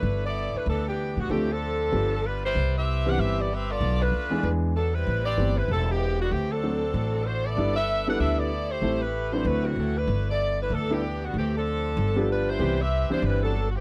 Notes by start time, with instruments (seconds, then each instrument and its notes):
Already playing: saxophone section A3 D4 E4 B4
0.03 upright bass G1
0.26 saxophone section B3 E4 A4 D5
0.54 saxophone section A3 D4 E4 B4, muted upright bass stroke
0.66 upright bass D2, saxophone section E3 B3 D4 A4
0.88 saxophone section E3 B3 D4 G4
1.17 upright bass A2, saxophone section D3 G3 B3 F#4
1.29 upright bass D2, saxophone section E3 A3 C4 G4, grand piano F3 A3 C4 D4 A4
1.51 saxophone section F3 C4 D4 A4
1.92 upright bass G1, grand piano F3 G3 B3 D4 G4
2.25 saxophone section G3 D4 F4 B4
2.44 saxophone section G3 E4 B4 C5
2.55 upright bass C2
2.77 saxophone section C4 G4 B4 E5
3.06 grand piano E3 G3 B3 C4 G4, saxophone section D4 G4 B4 F#5
3.18 upright bass G1, saxophone section C4 G4 B4 E5
3.40 saxophone section B3 E4 G4 D5
3.53 saxophone section C4 G4 B4 E5
3.70 saxophone section B3 F4 A4 D5
3.81 upright bass B1
4.01 saxophone section A3 D4 F4 B4
4.12 upright bass D#2
4.30 grand piano E3 G#3 B3 D4 G#4
4.43 upright bass E2
4.75 saxophone section F#3 B3 D4 A4
4.94 saxophone section G3 C4 E4 B4
5.07 upright bass A1
5.24 saxophone section C4 G4 B4 D5
5.37 upright bass G1, grand piano E3 A3 B3 C4 G4
5.57 saxophone section G3 C4 E4 B4
5.68 upright bass E1, saxophone section G3 C4 E4 A4
5.90 saxophone section E3 B3 C4 G4
6.20 saxophone section D3 G3 B3 F#4
6.31 upright bass D2, saxophone section E3 A3 C4 G4
6.51 saxophone section F#3 C4 D4 A4
6.63 grand piano F#3 A3 C4 D4 A4
6.94 upright bass A1
7.26 saxophone section A3 D4 F#4 C5
7.45 saxophone section B3 E4 A4 D5
7.57 upright bass G1, grand piano G3 B3 D4 E4 A4
7.76 saxophone section D4 A4 B4 E5
8.07 grand piano G3 B3 D4 E4 A4, saxophone section D4 G4 B4 F#5
8.20 upright bass D2, saxophone section D4 A4 B4 E5
8.39 saxophone section B3 E4 A4 D5
8.70 saxophone section A3 E4 G4 C5
8.82 upright bass A1, grand piano G3 A3 C4 E4 A4
9.02 saxophone section A3 E4 G4 B4
9.32 grand piano F#3 C4 D4 E4 B4, saxophone section A3 E4 G4 C5
9.45 upright bass D2, saxophone section A3 E4 F#4 B4
9.65 saxophone section E3 A3 C4 F#4
9.76 upright bass D2, saxophone section F#3 C4 E4 A4
9.97 saxophone section A3 D4 E4 B4
10.07 upright bass G1
10.29 saxophone section B3 E4 A4 D5
10.61 saxophone section A3 D4 E4 B4
10.70 upright bass D2, saxophone section E3 B3 D4 A4
10.90 saxophone section E3 B3 D4 G4, grand piano G3 B3 D4 E4 A4
11.25 saxophone section D3 G3 B3 F#4
11.34 upright bass D2
11.38 saxophone section E3 A3 C4 G4
11.56 saxophone section F3 C4 D4 A4
11.97 upright bass G1
12.15 grand piano F3 G3 B3 D4 G4
12.31 saxophone section G3 D4 F4 B4
12.49 saxophone section G3 E4 B4 C5
12.59 upright bass C2, grand piano E3 G3 B3 C4 G4
12.81 saxophone section C4 G4 B4 E5
13.10 grand piano E3 G3 B3 C4 D4, saxophone section G3 B3 E4 C5, muted upright bass stroke
13.22 upright bass G1, saxophone section G3 C4 E4 B4
13.43 saxophone section F#3 B3 D4 A4
13.70 saxophone section F#4
13.75 saxophone section E3 B3 C4 G4